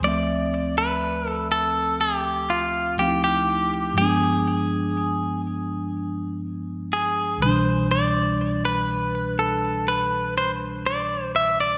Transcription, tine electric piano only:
X:1
M:4/4
L:1/8
Q:1/4=61
K:Ddor
V:1 name="Tine electric piano" clef=bass
[D,,F,A,Ce]6 [D,,F,A,C_E=E]2 | [G,,F,_A,B,D]6- [G,,F,A,B,D] [C,,B,,D,E,G,D]- | [C,,B,,D,E,G,D]6- [C,,B,,D,E,G,D] z |]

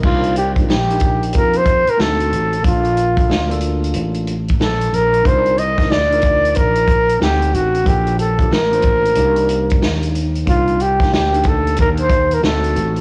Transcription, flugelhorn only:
X:1
M:4/4
L:1/16
Q:"Swing 16ths" 1/4=92
K:Cdor
V:1 name="Flugelhorn"
F2 G2 G4 B c2 B A4 | F6 z6 A2 B2 | c2 e2 d4 B4 G2 ^F2 | G2 A2 B8- B2 z2 |
F2 G2 G2 A2 B c2 B A4 |]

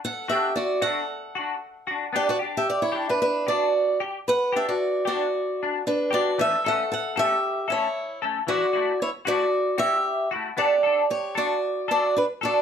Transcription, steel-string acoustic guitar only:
X:1
M:4/4
L:1/16
Q:1/4=114
K:D
V:1 name="Steel-string acoustic guitar"
[Af]2 [Ge]2 [Fd]2 [Af]8 z2 | [Gd] [Fd]2 [Ge] [Gd] [Ec]2 [DB] [DB]2 [Fd]4 z2 | [Bf]2 [Ge] [Fd]3 [Fd]6 [DB]2 [Fd]2 | [Ae]2 [Af]2 [Af]2 [Ge]4 [Ec]4 z2 |
[Fd]4 [Ec]2 [Fd]4 [Ge]4 z2 | [Gd]4 [Gc]2 [Fd]4 [Fd]2 [DB]2 [Fd]2 |]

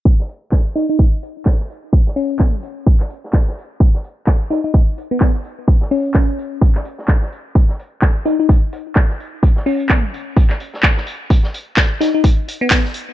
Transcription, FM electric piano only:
X:1
M:4/4
L:1/16
Q:"Swing 16ths" 1/4=128
K:C#dor
V:1 name="FM electric piano"
z6 D D z8 | z2 C3 z8 z3 | z6 D D z3 B, B, z3 | z2 C6 z8 |
z6 D D z8 | z2 C3 z8 z3 | z6 D D z3 B, B, z3 |]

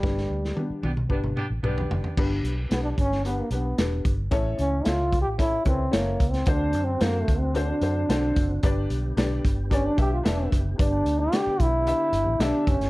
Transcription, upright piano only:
X:1
M:4/4
L:1/8
Q:1/4=112
K:G
V:1 name="Upright piano"
[B,DGB] z [B,DGB] z [B,DGB] z [B,DGB] z | [B,DGB] z [B,DGB] z [B,DGB] [B,DGB] [B,DGB] z | [^CEA^c] z [CAce] z [CEAc] [CEAB] [CEAc] z | [DFAc] z [DFAc] z [DFAc] [DFAc] [DFAc] z |
[DGBd] z [DGBd] z [DGBd] [DGBe] [DGBe] z | [DGBd] z [DGBd] z [DGBe] z [DGBe] z |]
V:2 name="Upright piano" clef=bass
G,,3 z4 z | G,,3 z4 z | A,,3 z4 z | D,3 z4 z |
G,,3 z4 z | G,,3 z4 z |]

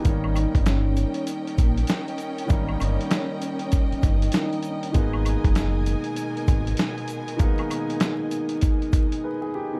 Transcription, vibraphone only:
X:1
M:4/4
L:1/16
Q:"Swing 16ths" 1/4=98
K:G#m
V:1 name="Vibraphone"
z2 [Dd]2 [Cc]2 [Cc]2 z2 [A,A] z4 z | z2 [Dd]2 [Cc]2 [Cc]4 [Dd]6 | z16 | z16 |]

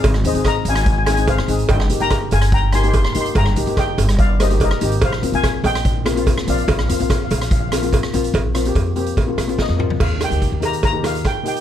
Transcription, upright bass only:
X:1
M:4/4
L:1/16
Q:1/4=145
K:Eb
V:1 name="Upright bass" clef=bass
A,,,2 E,, A,,,3 A,,,8 A,,,2 | G,,,2 B,,, G,,,3 G,,,8 G,,,2 | G,,,2 B,,, G,,,3 G,,,8 A,,,2 | B,,,2 F,, B,,,3 B,,,8 B,,,2 |
B,,,2 F,, B,,,3 B,,,8 B,,,2 | B,,,4 F,,4 B,,,2 B,,,3 F,,3 | E,,3 D,,2 E,,8 z3 |]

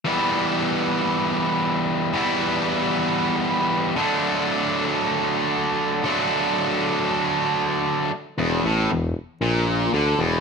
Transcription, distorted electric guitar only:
X:1
M:4/4
L:1/8
Q:1/4=115
K:Em
V:1 name="Distorted electric guitar" clef=bass
[E,G,B,E]8 | [E,G,B,E]6- [E,G,B,E] [D,F,A,D]- | [D,F,A,D]6- [D,F,A,D] [D,F,A,D]- | [D,F,A,D]6- [D,F,A,D] z |
E,, A,, E,, z ^A,,2 D, E,, |]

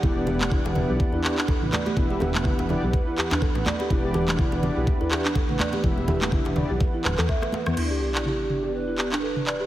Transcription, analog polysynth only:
X:1
M:4/4
L:1/16
Q:"Swing 16ths" 1/4=124
K:Em
V:1 name="Analog polysynth"
[B,DEGd]6 [B,DEGd]4 [B,DEGd] z4 z | [B,DEGe]6 [B,DEGd] z8 z | [B,DEGd]6 [B,DEGd]4 [B,DEGd] z4 z | [B,DEGe]6 [B,DEGd] z8 z |
[B,DEGd]6 [B,DEGd]4 [B,DEGd] z4 z |]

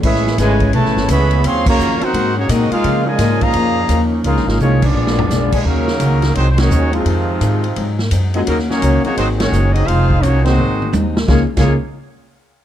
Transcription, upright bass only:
X:1
M:4/4
L:1/16
Q:"Swing" 1/4=171
K:Db
V:1 name="Upright bass" clef=bass
=A,,,4 ^G,,,4 (3=B,,,2 A,,,2 G,,,2 ^C,,4 | E,,4 F,,2 z2 A,,4 B,,2 z2 | D,4 A,,4 F,,4 E,,4 | (3D,,2 B,,,2 A,,,2 C,,4 B,,,4 _C,,4 |
E,,4 D,,4 C,,4 E,,4 | F,,4 A,,4 A,,4 G,,4 | E,,4 D,,2 z2 A,,,4 G,,,4 | F,,,4 C,,4 A,,,4 E,,4 |
D,, z2 D,,2 z8 z3 |]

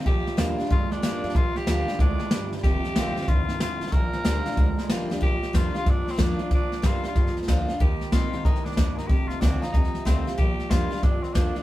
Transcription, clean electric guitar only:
X:1
M:4/4
L:1/8
Q:"Swing" 1/4=186
K:Bb
V:1 name="Clean electric guitar" clef=bass
[B,,F,] [B,,F,] [B,,G,] [B,,G,] [B,,_A,] [B,,A,] [B,,G,] [B,,G,] | [B,,F,] [B,,F,] [B,,G,] [B,,G,] [B,,_A,] [B,,A,] [B,,G,] [B,,G,] | [F,,C,] [F,,C,] [F,,D,] [F,,D,] [F,,E,] [F,,E,] [F,,D,] [F,,D,] | [B,,F,] [B,,F,] [B,,G,] [B,,G,] [B,,_A,] [B,,A,] [B,,G,] [B,,G,] |
[B,,F,]2 [B,,G,] [B,,G,] [B,,F,]2 [B,,F,] [B,,F,] | [B,,F,]2 [B,,G,] [B,,G,] [B,,F,]2 [B,,F,] [B,,F,] | [E,B,]2 [E,C] [E,C] [E,B,]2 [E,B,] [E,B,] | [F,,C,]2 [F,,D,] [F,,D,] [F,,C,]2 [F,,C,] [F,,C,] |
[B,,F,]2 [B,,G,] [B,,G,] [B,,F,]2 [B,,F,] [B,,F,] |]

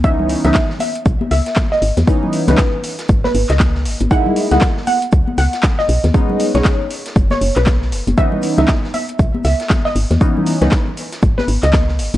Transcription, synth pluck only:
X:1
M:4/4
L:1/16
Q:"Swing 16ths" 1/4=118
K:C#dor
V:1 name="Synth pluck"
e2 z e2 z e2 z2 e2 z d2 z | z3 B2 z4 B z d z4 | f2 z f2 z f2 z2 f2 z d2 z | z3 c2 z4 c z B z4 |
e2 z e2 z e2 z2 e2 z d2 z | z3 B2 z4 B z d z4 |]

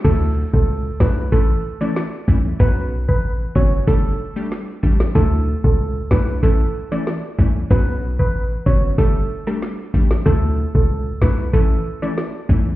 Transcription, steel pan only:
X:1
M:4/4
L:1/16
Q:1/4=94
K:D
V:1 name="Steel pan"
A z2 A z2 B z A z2 d z4 | B z2 B z2 c z A3 z4 z | A z2 A z2 B z A z2 d z4 | B z2 B z2 c z A3 z4 z |
A z2 A z2 B z A z2 d z4 |]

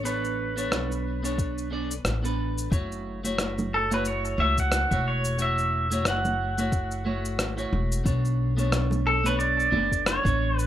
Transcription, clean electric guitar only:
X:1
M:4/4
L:1/16
Q:"Swing 16ths" 1/4=90
K:F#m
V:1 name="Clean electric guitar"
[B,DAc]3 [B,DAc]4 [B,DAc]3 [B,DAd] z2 [B,DAB]3 | [A,EFc]3 [A,EFc]4 [A,EFc]3 [A,EFc]3 [A,EFc]3 | [A,EFc]3 [A,EFc]4 [A,EFc]3 [A,EFc]3 [A,EFc]3 | [B,DAc]3 [B,DAc]4 [B,DAc]3 [B,DAd]3 [B,DAc]3 |]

